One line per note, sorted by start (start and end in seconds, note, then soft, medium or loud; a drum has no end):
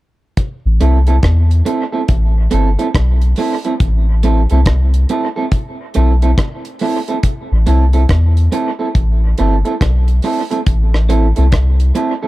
0.37 kick loud
0.37 closed hi-hat medium
0.66 0.79 A1 loud
0.81 1.20 C2 medium
0.81 0.97 A3 medium
0.81 0.97 C4 medium
0.81 0.97 E4 medium
0.81 0.98 A4 medium
0.81 closed hi-hat medium
1.07 1.16 A3 soft
1.07 1.15 C4 soft
1.07 1.15 E4 medium
1.07 1.15 A4 medium
1.07 closed hi-hat soft
1.23 1.62 E2 loud
1.23 kick medium
1.23 cross-stick loud
1.23 closed hi-hat medium
1.51 closed hi-hat medium
1.65 1.82 A3 medium
1.65 1.83 C4 medium
1.65 1.83 E4 medium
1.65 1.83 A4 medium
1.65 closed hi-hat medium
1.92 2.01 A3 medium
1.92 2.01 C4 medium
1.92 2.01 E4 medium
1.92 2.00 A4 medium
2.08 2.48 A1 loud
2.08 kick loud
2.08 closed hi-hat medium
2.51 2.77 G1 medium
2.51 2.68 A3 medium
2.51 2.68 C4 medium
2.51 2.68 E4 medium
2.51 2.68 A4 medium
2.51 closed hi-hat medium
2.79 2.87 A3 soft
2.79 2.87 C4 medium
2.79 2.87 E4 medium
2.79 2.86 A4 medium
2.79 closed hi-hat soft
2.95 3.34 B1 medium
2.95 kick loud
2.95 cross-stick loud
2.95 closed hi-hat medium
3.22 closed hi-hat soft
3.36 3.54 A3 medium
3.36 3.55 C4 medium
3.36 3.55 E4 medium
3.36 3.55 A4 medium
3.36 open hi-hat medium
3.65 3.73 A3 medium
3.65 3.73 C4 medium
3.65 3.73 E4 medium
3.65 3.72 A4 medium
3.65 closed hi-hat medium
3.80 4.46 A1 loud
3.80 kick loud
3.80 closed hi-hat medium
4.23 4.40 A3 medium
4.23 4.40 C4 medium
4.23 4.41 E4 medium
4.23 4.41 A4 medium
4.23 closed hi-hat medium
4.50 5.06 C2 medium
4.50 4.59 A3 soft
4.50 4.59 C4 medium
4.50 4.59 E4 medium
4.50 4.58 A4 medium
4.50 closed hi-hat soft
4.66 kick loud
4.66 cross-stick loud
4.66 closed hi-hat medium
4.94 closed hi-hat medium
5.09 5.26 A3 medium
5.09 5.26 C4 medium
5.09 5.27 E4 medium
5.09 5.26 A4 medium
5.09 closed hi-hat medium
5.36 5.44 A3 soft
5.36 5.44 C4 medium
5.36 5.44 E4 medium
5.36 5.44 A4 medium
5.52 kick loud
5.52 closed hi-hat medium
5.94 6.35 B1 medium
5.94 6.12 A3 medium
5.94 6.12 C4 medium
5.94 6.12 E4 medium
5.94 6.12 A4 loud
5.94 closed hi-hat medium
6.22 6.30 A3 soft
6.22 6.30 C4 medium
6.22 6.30 E4 medium
6.22 6.30 A4 medium
6.22 closed hi-hat soft
6.38 kick loud
6.38 cross-stick loud
6.38 closed hi-hat medium
6.65 closed hi-hat medium
6.79 6.98 A3 medium
6.79 6.98 C4 medium
6.79 6.98 E4 medium
6.79 6.98 A4 medium
6.79 open hi-hat medium
7.08 7.16 A3 soft
7.08 7.16 C4 medium
7.08 7.16 E4 medium
7.08 7.16 A4 medium
7.08 closed hi-hat soft
7.23 kick loud
7.23 closed hi-hat loud
7.52 7.66 A1 loud
7.67 8.06 C2 medium
7.67 7.83 A3 medium
7.67 7.83 C4 medium
7.67 7.83 E4 medium
7.67 7.84 A4 medium
7.67 closed hi-hat medium
7.93 8.02 A3 medium
7.93 8.01 C4 medium
7.93 8.01 E4 medium
7.93 8.01 A4 medium
7.93 closed hi-hat soft
8.09 8.49 E2 loud
8.09 kick loud
8.09 cross-stick loud
8.09 closed hi-hat medium
8.37 closed hi-hat soft
8.52 8.69 A3 medium
8.52 8.69 C4 medium
8.52 8.69 E4 medium
8.52 8.69 A4 medium
8.52 closed hi-hat medium
8.79 8.87 A3 soft
8.79 8.87 C4 soft
8.79 8.87 E4 medium
8.79 8.87 A4 medium
8.95 9.34 A1 loud
8.95 kick loud
8.95 closed hi-hat medium
9.38 9.63 G1 medium
9.38 9.55 A3 loud
9.38 9.55 C4 loud
9.38 9.55 E4 loud
9.38 9.55 A4 loud
9.38 closed hi-hat medium
9.65 9.73 A3 soft
9.65 9.73 C4 medium
9.65 9.73 E4 medium
9.65 9.73 A4 medium
9.65 closed hi-hat soft
9.81 10.20 B1 medium
9.81 kick loud
9.81 cross-stick loud
9.81 closed hi-hat loud
10.08 closed hi-hat soft
10.22 10.40 A3 medium
10.22 10.40 C4 medium
10.22 10.41 E4 medium
10.22 10.41 A4 medium
10.22 open hi-hat medium
10.51 10.59 A3 medium
10.51 10.59 C4 medium
10.51 10.59 E4 medium
10.51 10.58 A4 medium
10.51 closed hi-hat medium
10.66 11.33 A1 loud
10.66 kick loud
10.66 closed hi-hat medium
10.94 cross-stick medium
11.09 11.26 A3 medium
11.09 11.26 C4 medium
11.09 11.26 E4 medium
11.09 11.26 A4 medium
11.09 closed hi-hat medium
11.36 11.92 C2 loud
11.36 11.45 A3 medium
11.36 11.45 C4 medium
11.36 11.44 E4 soft
11.36 11.44 A4 medium
11.36 closed hi-hat soft
11.52 kick loud
11.52 cross-stick medium
11.52 closed hi-hat medium
11.80 closed hi-hat medium
11.95 12.12 A3 medium
11.95 12.12 C4 medium
11.95 12.12 E4 medium
11.95 12.12 A4 medium
11.95 closed hi-hat medium
12.23 12.28 A3 medium
12.23 12.28 C4 medium
12.23 12.28 E4 medium
12.23 12.28 A4 medium